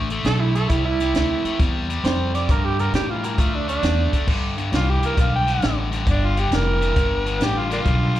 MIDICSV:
0, 0, Header, 1, 7, 480
1, 0, Start_track
1, 0, Tempo, 447427
1, 747, Time_signature, 4, 2, 24, 8
1, 8796, End_track
2, 0, Start_track
2, 0, Title_t, "Tenor saxophone"
2, 0, Program_c, 0, 66
2, 276, Note_on_c, 0, 69, 111
2, 433, Note_on_c, 0, 64, 95
2, 449, Note_off_c, 0, 69, 0
2, 585, Note_off_c, 0, 64, 0
2, 590, Note_on_c, 0, 69, 101
2, 733, Note_off_c, 0, 69, 0
2, 740, Note_on_c, 0, 64, 89
2, 898, Note_off_c, 0, 64, 0
2, 913, Note_on_c, 0, 64, 99
2, 1840, Note_off_c, 0, 64, 0
2, 2191, Note_on_c, 0, 72, 99
2, 2519, Note_on_c, 0, 74, 90
2, 2535, Note_off_c, 0, 72, 0
2, 2688, Note_on_c, 0, 70, 88
2, 2704, Note_off_c, 0, 74, 0
2, 2838, Note_on_c, 0, 67, 88
2, 2854, Note_off_c, 0, 70, 0
2, 3000, Note_on_c, 0, 70, 96
2, 3016, Note_off_c, 0, 67, 0
2, 3148, Note_off_c, 0, 70, 0
2, 3165, Note_on_c, 0, 67, 97
2, 3322, Note_on_c, 0, 65, 91
2, 3338, Note_off_c, 0, 67, 0
2, 3485, Note_on_c, 0, 70, 81
2, 3501, Note_off_c, 0, 65, 0
2, 3647, Note_on_c, 0, 65, 82
2, 3663, Note_off_c, 0, 70, 0
2, 3803, Note_on_c, 0, 62, 84
2, 3819, Note_off_c, 0, 65, 0
2, 3949, Note_off_c, 0, 62, 0
2, 3958, Note_on_c, 0, 62, 103
2, 4571, Note_off_c, 0, 62, 0
2, 8796, End_track
3, 0, Start_track
3, 0, Title_t, "Harmonica"
3, 0, Program_c, 1, 22
3, 5099, Note_on_c, 1, 65, 86
3, 5256, Note_on_c, 1, 67, 80
3, 5272, Note_off_c, 1, 65, 0
3, 5428, Note_on_c, 1, 70, 79
3, 5444, Note_off_c, 1, 67, 0
3, 5561, Note_off_c, 1, 70, 0
3, 5591, Note_on_c, 1, 77, 76
3, 5723, Note_off_c, 1, 77, 0
3, 5749, Note_on_c, 1, 79, 95
3, 6193, Note_off_c, 1, 79, 0
3, 6545, Note_on_c, 1, 62, 86
3, 6702, Note_on_c, 1, 65, 77
3, 6718, Note_off_c, 1, 62, 0
3, 6858, Note_on_c, 1, 67, 78
3, 6874, Note_off_c, 1, 65, 0
3, 6997, Note_off_c, 1, 67, 0
3, 7023, Note_on_c, 1, 70, 84
3, 7979, Note_on_c, 1, 67, 83
3, 7995, Note_off_c, 1, 70, 0
3, 8133, Note_on_c, 1, 65, 76
3, 8149, Note_off_c, 1, 67, 0
3, 8276, Note_off_c, 1, 65, 0
3, 8289, Note_on_c, 1, 58, 62
3, 8289, Note_on_c, 1, 62, 62
3, 8289, Note_on_c, 1, 65, 88
3, 8356, Note_off_c, 1, 62, 0
3, 8382, Note_off_c, 1, 58, 0
3, 8796, Note_off_c, 1, 65, 0
3, 8796, End_track
4, 0, Start_track
4, 0, Title_t, "Overdriven electric guitar"
4, 0, Program_c, 2, 29
4, 117, Note_on_c, 2, 50, 66
4, 125, Note_on_c, 2, 57, 80
4, 254, Note_off_c, 2, 50, 0
4, 258, Note_off_c, 2, 57, 0
4, 283, Note_on_c, 2, 50, 80
4, 285, Note_on_c, 2, 57, 103
4, 566, Note_off_c, 2, 50, 0
4, 567, Note_off_c, 2, 57, 0
4, 606, Note_on_c, 2, 50, 74
4, 612, Note_on_c, 2, 57, 91
4, 739, Note_off_c, 2, 50, 0
4, 742, Note_off_c, 2, 57, 0
4, 761, Note_on_c, 2, 48, 84
4, 764, Note_on_c, 2, 55, 105
4, 1044, Note_off_c, 2, 48, 0
4, 1046, Note_off_c, 2, 55, 0
4, 1081, Note_on_c, 2, 48, 64
4, 1084, Note_on_c, 2, 55, 79
4, 1216, Note_off_c, 2, 48, 0
4, 1218, Note_off_c, 2, 55, 0
4, 1240, Note_on_c, 2, 48, 90
4, 1244, Note_on_c, 2, 57, 101
4, 1524, Note_off_c, 2, 48, 0
4, 1526, Note_off_c, 2, 57, 0
4, 1556, Note_on_c, 2, 48, 82
4, 1557, Note_on_c, 2, 57, 99
4, 1694, Note_off_c, 2, 48, 0
4, 1694, Note_off_c, 2, 57, 0
4, 1708, Note_on_c, 2, 48, 84
4, 1713, Note_on_c, 2, 55, 102
4, 1998, Note_off_c, 2, 48, 0
4, 2000, Note_off_c, 2, 55, 0
4, 2034, Note_on_c, 2, 48, 72
4, 2040, Note_on_c, 2, 55, 82
4, 2172, Note_off_c, 2, 48, 0
4, 2175, Note_off_c, 2, 55, 0
4, 2186, Note_on_c, 2, 48, 91
4, 2187, Note_on_c, 2, 55, 96
4, 2476, Note_off_c, 2, 48, 0
4, 2477, Note_off_c, 2, 55, 0
4, 2513, Note_on_c, 2, 48, 86
4, 2518, Note_on_c, 2, 55, 81
4, 2651, Note_off_c, 2, 48, 0
4, 2654, Note_off_c, 2, 55, 0
4, 2672, Note_on_c, 2, 43, 84
4, 2675, Note_on_c, 2, 50, 90
4, 2959, Note_off_c, 2, 43, 0
4, 2961, Note_off_c, 2, 50, 0
4, 2998, Note_on_c, 2, 43, 79
4, 3004, Note_on_c, 2, 50, 81
4, 3134, Note_off_c, 2, 43, 0
4, 3137, Note_off_c, 2, 50, 0
4, 3149, Note_on_c, 2, 43, 85
4, 3153, Note_on_c, 2, 52, 101
4, 3438, Note_off_c, 2, 43, 0
4, 3440, Note_off_c, 2, 52, 0
4, 3462, Note_on_c, 2, 43, 75
4, 3468, Note_on_c, 2, 52, 93
4, 3606, Note_off_c, 2, 43, 0
4, 3609, Note_off_c, 2, 52, 0
4, 3624, Note_on_c, 2, 50, 85
4, 3630, Note_on_c, 2, 57, 105
4, 3915, Note_off_c, 2, 50, 0
4, 3918, Note_off_c, 2, 57, 0
4, 3944, Note_on_c, 2, 50, 67
4, 3949, Note_on_c, 2, 57, 82
4, 4087, Note_off_c, 2, 50, 0
4, 4089, Note_off_c, 2, 57, 0
4, 4104, Note_on_c, 2, 50, 85
4, 4105, Note_on_c, 2, 57, 100
4, 4395, Note_off_c, 2, 50, 0
4, 4395, Note_off_c, 2, 57, 0
4, 4424, Note_on_c, 2, 50, 81
4, 4431, Note_on_c, 2, 57, 84
4, 4566, Note_off_c, 2, 50, 0
4, 4570, Note_off_c, 2, 57, 0
4, 4578, Note_on_c, 2, 43, 84
4, 4580, Note_on_c, 2, 50, 90
4, 4872, Note_off_c, 2, 43, 0
4, 4873, Note_off_c, 2, 50, 0
4, 4903, Note_on_c, 2, 43, 72
4, 4911, Note_on_c, 2, 50, 69
4, 5046, Note_off_c, 2, 43, 0
4, 5050, Note_off_c, 2, 50, 0
4, 5062, Note_on_c, 2, 43, 75
4, 5068, Note_on_c, 2, 52, 95
4, 5354, Note_off_c, 2, 43, 0
4, 5357, Note_off_c, 2, 52, 0
4, 5391, Note_on_c, 2, 43, 72
4, 5392, Note_on_c, 2, 52, 83
4, 5530, Note_off_c, 2, 43, 0
4, 5531, Note_off_c, 2, 52, 0
4, 5542, Note_on_c, 2, 43, 83
4, 5546, Note_on_c, 2, 50, 89
4, 5834, Note_off_c, 2, 43, 0
4, 5836, Note_off_c, 2, 50, 0
4, 5864, Note_on_c, 2, 43, 68
4, 5869, Note_on_c, 2, 50, 75
4, 6006, Note_off_c, 2, 43, 0
4, 6009, Note_off_c, 2, 50, 0
4, 6019, Note_on_c, 2, 43, 80
4, 6023, Note_on_c, 2, 50, 93
4, 6313, Note_off_c, 2, 43, 0
4, 6315, Note_off_c, 2, 50, 0
4, 6341, Note_on_c, 2, 43, 78
4, 6349, Note_on_c, 2, 50, 91
4, 6485, Note_off_c, 2, 43, 0
4, 6489, Note_off_c, 2, 50, 0
4, 6501, Note_on_c, 2, 43, 76
4, 6512, Note_on_c, 2, 50, 88
4, 6794, Note_off_c, 2, 43, 0
4, 6800, Note_off_c, 2, 50, 0
4, 6829, Note_on_c, 2, 43, 67
4, 6834, Note_on_c, 2, 50, 76
4, 6970, Note_off_c, 2, 43, 0
4, 6972, Note_off_c, 2, 50, 0
4, 6987, Note_on_c, 2, 43, 79
4, 6988, Note_on_c, 2, 52, 99
4, 7278, Note_off_c, 2, 43, 0
4, 7278, Note_off_c, 2, 52, 0
4, 7307, Note_on_c, 2, 43, 74
4, 7309, Note_on_c, 2, 52, 91
4, 7449, Note_off_c, 2, 43, 0
4, 7450, Note_off_c, 2, 52, 0
4, 7464, Note_on_c, 2, 43, 82
4, 7467, Note_on_c, 2, 50, 92
4, 7756, Note_off_c, 2, 43, 0
4, 7758, Note_off_c, 2, 50, 0
4, 7785, Note_on_c, 2, 43, 64
4, 7787, Note_on_c, 2, 50, 79
4, 7920, Note_off_c, 2, 43, 0
4, 7929, Note_off_c, 2, 50, 0
4, 7933, Note_on_c, 2, 43, 88
4, 7941, Note_on_c, 2, 50, 92
4, 8231, Note_off_c, 2, 43, 0
4, 8235, Note_off_c, 2, 50, 0
4, 8261, Note_on_c, 2, 43, 83
4, 8263, Note_on_c, 2, 50, 85
4, 8403, Note_off_c, 2, 43, 0
4, 8408, Note_off_c, 2, 50, 0
4, 8416, Note_on_c, 2, 43, 85
4, 8419, Note_on_c, 2, 50, 92
4, 8713, Note_off_c, 2, 43, 0
4, 8714, Note_off_c, 2, 50, 0
4, 8743, Note_on_c, 2, 43, 74
4, 8747, Note_on_c, 2, 50, 81
4, 8796, Note_off_c, 2, 43, 0
4, 8796, Note_off_c, 2, 50, 0
4, 8796, End_track
5, 0, Start_track
5, 0, Title_t, "Upright bass"
5, 0, Program_c, 3, 32
5, 0, Note_on_c, 3, 33, 89
5, 252, Note_off_c, 3, 33, 0
5, 264, Note_on_c, 3, 35, 94
5, 731, Note_off_c, 3, 35, 0
5, 747, Note_on_c, 3, 36, 81
5, 1212, Note_off_c, 3, 36, 0
5, 1222, Note_on_c, 3, 38, 80
5, 1525, Note_off_c, 3, 38, 0
5, 1712, Note_on_c, 3, 40, 93
5, 2174, Note_off_c, 3, 40, 0
5, 2185, Note_on_c, 3, 41, 99
5, 2650, Note_off_c, 3, 41, 0
5, 2668, Note_on_c, 3, 43, 89
5, 3132, Note_off_c, 3, 43, 0
5, 3144, Note_on_c, 3, 45, 84
5, 3610, Note_off_c, 3, 45, 0
5, 3629, Note_on_c, 3, 38, 92
5, 4092, Note_off_c, 3, 38, 0
5, 4105, Note_on_c, 3, 40, 97
5, 4405, Note_off_c, 3, 40, 0
5, 4586, Note_on_c, 3, 43, 73
5, 5050, Note_off_c, 3, 43, 0
5, 5067, Note_on_c, 3, 36, 82
5, 5366, Note_off_c, 3, 36, 0
5, 5548, Note_on_c, 3, 35, 82
5, 6012, Note_off_c, 3, 35, 0
5, 6034, Note_on_c, 3, 33, 91
5, 6495, Note_off_c, 3, 33, 0
5, 6507, Note_on_c, 3, 31, 82
5, 6972, Note_off_c, 3, 31, 0
5, 6987, Note_on_c, 3, 29, 90
5, 7452, Note_off_c, 3, 29, 0
5, 7467, Note_on_c, 3, 31, 81
5, 7933, Note_off_c, 3, 31, 0
5, 7944, Note_on_c, 3, 33, 86
5, 8412, Note_off_c, 3, 33, 0
5, 8431, Note_on_c, 3, 35, 88
5, 8796, Note_off_c, 3, 35, 0
5, 8796, End_track
6, 0, Start_track
6, 0, Title_t, "Muted upright bass strokes"
6, 1550, Note_on_c, 9, 29, 42
6, 1658, Note_off_c, 9, 29, 0
6, 4433, Note_on_c, 9, 29, 43
6, 4541, Note_off_c, 9, 29, 0
6, 5390, Note_on_c, 9, 29, 38
6, 5497, Note_off_c, 9, 29, 0
6, 8796, End_track
7, 0, Start_track
7, 0, Title_t, "Drums"
7, 108, Note_on_c, 9, 42, 63
7, 216, Note_off_c, 9, 42, 0
7, 264, Note_on_c, 9, 42, 93
7, 278, Note_on_c, 9, 38, 122
7, 371, Note_off_c, 9, 42, 0
7, 385, Note_off_c, 9, 38, 0
7, 592, Note_on_c, 9, 42, 64
7, 699, Note_off_c, 9, 42, 0
7, 745, Note_on_c, 9, 42, 84
7, 749, Note_on_c, 9, 36, 96
7, 853, Note_off_c, 9, 42, 0
7, 856, Note_off_c, 9, 36, 0
7, 1073, Note_on_c, 9, 42, 58
7, 1087, Note_on_c, 9, 38, 31
7, 1181, Note_off_c, 9, 42, 0
7, 1195, Note_off_c, 9, 38, 0
7, 1230, Note_on_c, 9, 42, 88
7, 1244, Note_on_c, 9, 38, 119
7, 1337, Note_off_c, 9, 42, 0
7, 1351, Note_off_c, 9, 38, 0
7, 1556, Note_on_c, 9, 42, 59
7, 1664, Note_off_c, 9, 42, 0
7, 1712, Note_on_c, 9, 36, 109
7, 1714, Note_on_c, 9, 42, 83
7, 1728, Note_on_c, 9, 38, 30
7, 1819, Note_off_c, 9, 36, 0
7, 1821, Note_off_c, 9, 42, 0
7, 1835, Note_off_c, 9, 38, 0
7, 2039, Note_on_c, 9, 42, 59
7, 2146, Note_off_c, 9, 42, 0
7, 2195, Note_on_c, 9, 42, 86
7, 2209, Note_on_c, 9, 38, 119
7, 2302, Note_off_c, 9, 42, 0
7, 2316, Note_off_c, 9, 38, 0
7, 2517, Note_on_c, 9, 42, 62
7, 2531, Note_on_c, 9, 38, 32
7, 2624, Note_off_c, 9, 42, 0
7, 2638, Note_off_c, 9, 38, 0
7, 2671, Note_on_c, 9, 36, 106
7, 2673, Note_on_c, 9, 42, 81
7, 2778, Note_off_c, 9, 36, 0
7, 2780, Note_off_c, 9, 42, 0
7, 2995, Note_on_c, 9, 42, 55
7, 3102, Note_off_c, 9, 42, 0
7, 3149, Note_on_c, 9, 42, 88
7, 3163, Note_on_c, 9, 38, 120
7, 3256, Note_off_c, 9, 42, 0
7, 3270, Note_off_c, 9, 38, 0
7, 3474, Note_on_c, 9, 42, 66
7, 3582, Note_off_c, 9, 42, 0
7, 3628, Note_on_c, 9, 36, 104
7, 3632, Note_on_c, 9, 42, 85
7, 3736, Note_off_c, 9, 36, 0
7, 3739, Note_off_c, 9, 42, 0
7, 3956, Note_on_c, 9, 42, 62
7, 4063, Note_off_c, 9, 42, 0
7, 4109, Note_on_c, 9, 42, 96
7, 4123, Note_on_c, 9, 38, 120
7, 4217, Note_off_c, 9, 42, 0
7, 4231, Note_off_c, 9, 38, 0
7, 4432, Note_on_c, 9, 36, 77
7, 4433, Note_on_c, 9, 42, 66
7, 4447, Note_on_c, 9, 38, 34
7, 4539, Note_off_c, 9, 36, 0
7, 4540, Note_off_c, 9, 42, 0
7, 4554, Note_off_c, 9, 38, 0
7, 4587, Note_on_c, 9, 49, 92
7, 4588, Note_on_c, 9, 36, 109
7, 4694, Note_off_c, 9, 49, 0
7, 4695, Note_off_c, 9, 36, 0
7, 4912, Note_on_c, 9, 42, 55
7, 5019, Note_off_c, 9, 42, 0
7, 5070, Note_on_c, 9, 42, 84
7, 5084, Note_on_c, 9, 38, 111
7, 5177, Note_off_c, 9, 42, 0
7, 5191, Note_off_c, 9, 38, 0
7, 5393, Note_on_c, 9, 42, 59
7, 5500, Note_off_c, 9, 42, 0
7, 5550, Note_on_c, 9, 36, 100
7, 5552, Note_on_c, 9, 42, 79
7, 5566, Note_on_c, 9, 38, 28
7, 5657, Note_off_c, 9, 36, 0
7, 5659, Note_off_c, 9, 42, 0
7, 5673, Note_off_c, 9, 38, 0
7, 5877, Note_on_c, 9, 42, 56
7, 5891, Note_on_c, 9, 38, 29
7, 5984, Note_off_c, 9, 42, 0
7, 5998, Note_off_c, 9, 38, 0
7, 6030, Note_on_c, 9, 42, 75
7, 6044, Note_on_c, 9, 38, 114
7, 6137, Note_off_c, 9, 42, 0
7, 6151, Note_off_c, 9, 38, 0
7, 6357, Note_on_c, 9, 42, 59
7, 6371, Note_on_c, 9, 38, 33
7, 6465, Note_off_c, 9, 42, 0
7, 6479, Note_off_c, 9, 38, 0
7, 6509, Note_on_c, 9, 36, 96
7, 6510, Note_on_c, 9, 42, 72
7, 6616, Note_off_c, 9, 36, 0
7, 6618, Note_off_c, 9, 42, 0
7, 6835, Note_on_c, 9, 42, 54
7, 6943, Note_off_c, 9, 42, 0
7, 6991, Note_on_c, 9, 42, 81
7, 7005, Note_on_c, 9, 38, 107
7, 7098, Note_off_c, 9, 42, 0
7, 7112, Note_off_c, 9, 38, 0
7, 7318, Note_on_c, 9, 42, 70
7, 7425, Note_off_c, 9, 42, 0
7, 7469, Note_on_c, 9, 36, 99
7, 7471, Note_on_c, 9, 42, 81
7, 7577, Note_off_c, 9, 36, 0
7, 7578, Note_off_c, 9, 42, 0
7, 7792, Note_on_c, 9, 42, 60
7, 7899, Note_off_c, 9, 42, 0
7, 7946, Note_on_c, 9, 42, 89
7, 7960, Note_on_c, 9, 38, 109
7, 8053, Note_off_c, 9, 42, 0
7, 8067, Note_off_c, 9, 38, 0
7, 8274, Note_on_c, 9, 42, 60
7, 8288, Note_on_c, 9, 38, 29
7, 8381, Note_off_c, 9, 42, 0
7, 8395, Note_off_c, 9, 38, 0
7, 8426, Note_on_c, 9, 42, 77
7, 8429, Note_on_c, 9, 36, 101
7, 8533, Note_off_c, 9, 42, 0
7, 8537, Note_off_c, 9, 36, 0
7, 8752, Note_on_c, 9, 42, 60
7, 8796, Note_off_c, 9, 42, 0
7, 8796, End_track
0, 0, End_of_file